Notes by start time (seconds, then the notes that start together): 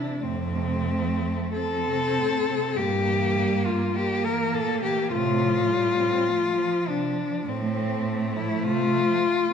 Already playing: E3 D4 E4
0.22 F2 A2 A3 C4
0.55 C3
0.88 F3
1.23 A3
1.53 F3 C4 A4
1.88 C3
2.18 A2
2.48 C3
2.76 G2 A#2 A#3 G4
3.08 E3
3.38 G3
3.66 A#3 F4
3.94 G3 A#3 G4
4.25 E3 A#4
4.54 A#2 A4
4.83 E3 G4
5.12 A2 C3 A3 F4
5.42 F3
5.69 G3 A3
5.98 C4
6.29 F3 A3
6.58 F3
6.87 C3 D4
7.18 F3
7.46 A2 A3 C4
7.75 C4
8.05 A3
8.35 F3 E4
8.63 C3 F4
8.92 F3
9.22 A3